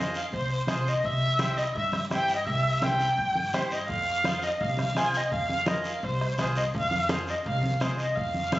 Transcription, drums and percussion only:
0.14 short guiro
0.32 bombo low, high conga, long guiro
0.67 bombo rim, high conga, short guiro
0.87 short guiro
1.04 bombo low, high conga, long guiro
1.39 bombo rim, high conga, short guiro
1.58 short guiro
1.75 bombo low, high conga, long guiro
1.93 bombo rim, high conga
2.10 bombo rim, high conga, short guiro
2.28 short guiro
2.46 bombo low, high conga, long guiro
2.82 bombo rim, high conga, short guiro
3.00 short guiro
3.18 bombo low, high conga, long guiro
3.35 high conga
3.53 bombo rim, high conga, short guiro
3.71 short guiro
3.88 bombo low, high conga, long guiro
4.24 bombo rim, high conga, short guiro
4.43 short guiro
4.60 bombo low, high conga, long guiro
4.77 bombo rim, high conga
4.95 bombo rim, high conga, short guiro
5.14 short guiro
5.31 bombo low, high conga, long guiro
5.49 high conga
5.66 bombo rim, high conga, short guiro
5.84 short guiro
6.03 bombo low, high conga, long guiro
6.21 bombo rim
6.38 bombo rim, high conga, short guiro
6.55 short guiro
6.74 bombo low, high conga, long guiro
6.91 high conga
7.09 bombo rim, high conga, short guiro
7.27 short guiro
7.44 bombo low, high conga, long guiro
7.63 high conga
7.80 bombo rim, high conga, short guiro
7.98 short guiro
8.17 bombo low, high conga, long guiro
8.34 high conga
8.52 bombo rim, high conga, short guiro

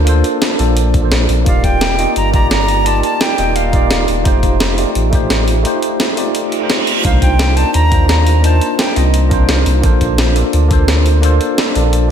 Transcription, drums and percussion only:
0.07 closed hi-hat
0.24 closed hi-hat
0.42 snare, closed hi-hat
0.59 open hi-hat
0.77 closed hi-hat
0.94 kick, closed hi-hat
1.12 snare, closed hi-hat
1.29 open hi-hat
1.46 kick, closed hi-hat
1.64 kick, closed hi-hat
1.81 snare, closed hi-hat
1.99 open hi-hat
2.16 closed hi-hat
2.34 kick, closed hi-hat
2.51 snare, closed hi-hat
2.68 open hi-hat
2.86 closed hi-hat
3.03 closed hi-hat
3.21 snare, closed hi-hat
3.38 open hi-hat
3.56 closed hi-hat
3.73 kick, closed hi-hat
3.91 snare, closed hi-hat
4.08 open hi-hat
4.25 kick, closed hi-hat
4.43 kick, closed hi-hat
4.60 snare, closed hi-hat
4.78 open hi-hat
4.95 closed hi-hat
5.13 kick, closed hi-hat
5.30 snare, closed hi-hat
5.48 open hi-hat
5.65 closed hi-hat
5.83 closed hi-hat
6.00 snare, closed hi-hat
6.17 open hi-hat
6.35 closed hi-hat
6.52 closed hi-hat
6.70 snare, closed hi-hat
6.87 open hi-hat
7.05 kick, closed hi-hat
7.22 kick, closed hi-hat
7.39 snare, closed hi-hat
7.57 open hi-hat
7.74 closed hi-hat
7.92 kick, closed hi-hat
8.09 snare, closed hi-hat
8.27 open hi-hat
8.44 closed hi-hat
8.61 closed hi-hat
8.79 snare, closed hi-hat
8.96 open hi-hat
9.14 closed hi-hat
9.31 kick, closed hi-hat
9.49 snare, closed hi-hat
9.66 open hi-hat
9.84 kick, closed hi-hat
10.01 kick, closed hi-hat
10.18 snare, closed hi-hat
10.36 open hi-hat
10.53 closed hi-hat
10.71 kick, closed hi-hat
10.88 snare, closed hi-hat
11.06 open hi-hat
11.23 closed hi-hat
11.41 closed hi-hat
11.58 snare, closed hi-hat
11.75 open hi-hat
11.93 closed hi-hat

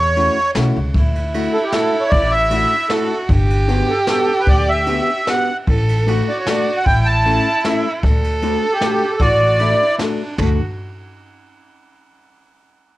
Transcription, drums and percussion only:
0.16 ride
0.55 snare, ride
0.94 kick, ride
1.16 ride
1.34 ride
1.73 snare, ride
2.12 kick, ride
2.50 ride
2.90 snare, ride
3.29 kick, ride
3.50 ride
3.68 ride
4.07 snare, ride
4.47 kick, ride
4.86 ride
5.27 snare, ride
5.67 kick, ride
5.89 ride
6.07 ride
6.46 snare, ride
6.86 kick, ride
7.25 ride
7.65 snare, ride
8.03 kick, ride
8.24 ride
8.42 ride
8.82 snare, ride
9.20 kick, ride
9.59 ride
9.99 snare, ride
10.38 kick, floor tom, china

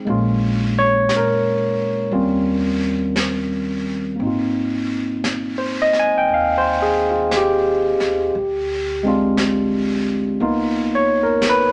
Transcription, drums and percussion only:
0.07 brush sweep
1.09 brush sweep, snare, hi-hat pedal
2.12 brush sweep
3.16 brush sweep, snare, hi-hat pedal
4.20 brush sweep
5.24 brush sweep, snare, hi-hat pedal
5.93 snare
6.27 brush sweep
7.31 brush sweep, snare, hi-hat pedal
8.00 snare
8.35 brush sweep
9.37 brush sweep, snare, hi-hat pedal
10.39 brush sweep
11.42 brush sweep, snare, hi-hat pedal

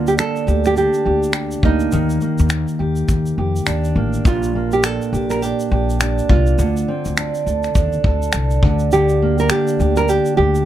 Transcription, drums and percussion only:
0.07 shaker
0.18 finger snap, shaker
0.36 shaker
0.48 shaker
0.65 finger snap, shaker
0.77 shaker
0.94 shaker
1.23 shaker
1.33 finger snap, shaker
1.51 shaker
1.63 kick
1.80 shaker
1.92 shaker
2.10 shaker
2.21 shaker
2.38 shaker
2.50 finger snap, shaker
2.68 shaker
2.96 shaker
3.09 kick, shaker
3.26 shaker
3.56 shaker
3.66 finger snap, shaker
3.84 shaker
4.13 shaker
4.25 kick, shaker
4.43 shaker
4.72 shaker
4.83 finger snap, shaker
5.02 shaker
5.14 shaker
5.30 finger snap, shaker
5.43 shaker
5.60 shaker
5.90 shaker
6.00 finger snap, shaker
6.18 shaker
6.29 kick
6.46 shaker
6.59 shaker
6.77 shaker
7.05 shaker
7.17 finger snap, shaker
7.35 shaker
7.47 shaker
7.63 finger snap, shaker
7.75 kick, shaker
7.92 shaker
8.04 kick
8.22 shaker
8.32 finger snap, shaker
8.50 shaker
8.63 kick
8.79 shaker
8.92 shaker
9.09 shaker
9.38 shaker
9.49 finger snap, shaker
9.68 shaker
9.80 shaker
9.96 finger snap, shaker
10.09 shaker
10.25 shaker
10.55 shaker

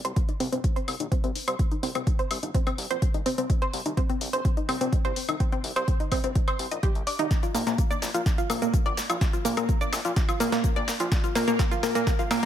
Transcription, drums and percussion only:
0.05 closed hi-hat
0.16 kick, closed hi-hat
0.29 closed hi-hat
0.40 open hi-hat
0.52 closed hi-hat
0.64 kick, closed hi-hat
0.76 closed hi-hat
0.88 open hi-hat, high woodblock
1.00 closed hi-hat
1.12 kick, closed hi-hat
1.24 closed hi-hat
1.35 open hi-hat
1.48 closed hi-hat, high woodblock
1.59 kick, closed hi-hat
1.71 closed hi-hat
1.83 open hi-hat
1.95 closed hi-hat, high woodblock
2.07 kick, closed hi-hat
2.19 closed hi-hat
2.31 open hi-hat, high woodblock
2.43 closed hi-hat
2.54 kick, closed hi-hat
2.67 closed hi-hat, high woodblock
2.78 open hi-hat
2.90 closed hi-hat
3.02 kick, closed hi-hat
3.14 closed hi-hat
3.26 open hi-hat
3.38 closed hi-hat
3.50 kick, closed hi-hat
3.62 closed hi-hat
3.73 open hi-hat
3.86 closed hi-hat
3.97 kick, closed hi-hat
4.10 closed hi-hat
4.21 open hi-hat
4.33 closed hi-hat
4.45 kick, closed hi-hat
4.57 closed hi-hat
4.69 open hi-hat, high woodblock
4.81 closed hi-hat
4.92 kick, closed hi-hat
5.05 closed hi-hat
5.16 open hi-hat
5.29 closed hi-hat, high woodblock
5.40 kick, closed hi-hat
5.52 closed hi-hat
5.64 open hi-hat
5.76 closed hi-hat, high woodblock
5.88 kick, closed hi-hat
6.00 closed hi-hat
6.12 kick, open hi-hat, high woodblock
6.24 closed hi-hat
6.35 kick, closed hi-hat
6.48 closed hi-hat, high woodblock
6.59 open hi-hat
6.71 closed hi-hat
6.83 kick, closed hi-hat
6.95 closed hi-hat
7.07 open hi-hat
7.19 closed hi-hat
7.31 kick, snare, closed hi-hat, cabasa
7.43 closed hi-hat, cabasa
7.55 open hi-hat, cabasa
7.67 snare, closed hi-hat, cabasa
7.78 kick, closed hi-hat, cabasa
7.91 closed hi-hat, cabasa
8.02 snare, open hi-hat, cabasa
8.14 closed hi-hat, cabasa
8.26 kick, snare, closed hi-hat, cabasa
8.38 closed hi-hat, cabasa
8.50 open hi-hat, cabasa, high woodblock
8.62 closed hi-hat, cabasa
8.74 kick, closed hi-hat, cabasa
8.86 closed hi-hat
8.97 snare, open hi-hat, cabasa
9.10 closed hi-hat, cabasa, high woodblock
9.21 kick, snare, closed hi-hat, cabasa
9.33 closed hi-hat, cabasa
9.45 open hi-hat, cabasa
9.57 closed hi-hat, cabasa, high woodblock
9.69 kick, closed hi-hat, cabasa
9.81 closed hi-hat, cabasa
9.93 snare, open hi-hat, cabasa, high woodblock
10.05 closed hi-hat, cabasa
10.16 kick, snare, closed hi-hat, cabasa
10.29 closed hi-hat, cabasa, high woodblock
10.40 open hi-hat, cabasa
10.52 snare, closed hi-hat, cabasa
10.64 kick, closed hi-hat, cabasa
10.76 closed hi-hat
10.88 snare, open hi-hat, cabasa
11.00 closed hi-hat, cabasa
11.12 kick, snare, closed hi-hat, cabasa
11.24 closed hi-hat, cabasa
11.35 snare, open hi-hat, cabasa
11.48 closed hi-hat, cabasa
11.59 kick, snare, closed hi-hat, cabasa
11.71 closed hi-hat, cabasa
11.83 snare, open hi-hat, cabasa
11.95 closed hi-hat, cabasa
12.07 kick, snare, closed hi-hat, cabasa
12.19 closed hi-hat, cabasa
12.31 snare, open hi-hat, cabasa, high woodblock

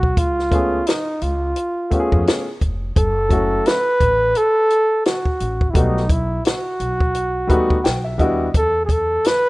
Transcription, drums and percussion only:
0.03 kick
0.17 kick, closed hi-hat
0.39 snare
0.52 kick, closed hi-hat
0.87 snare, closed hi-hat
1.21 closed hi-hat
1.56 closed hi-hat
1.92 kick, closed hi-hat
2.12 kick
2.27 snare, closed hi-hat
2.61 kick, closed hi-hat
2.96 kick, closed hi-hat
3.31 kick, closed hi-hat
3.66 snare, closed hi-hat
4.01 kick, closed hi-hat
4.35 closed hi-hat
4.70 closed hi-hat
5.05 snare, closed hi-hat
5.25 kick
5.40 closed hi-hat
5.61 kick
5.75 kick, closed hi-hat
5.97 snare
6.09 kick, closed hi-hat
6.45 snare, closed hi-hat
6.80 closed hi-hat
7.00 kick
7.15 closed hi-hat
7.50 kick, closed hi-hat
7.70 kick
7.85 snare, closed hi-hat
8.19 kick, closed hi-hat
8.54 kick, closed hi-hat
8.89 kick, closed hi-hat
9.24 snare, closed hi-hat

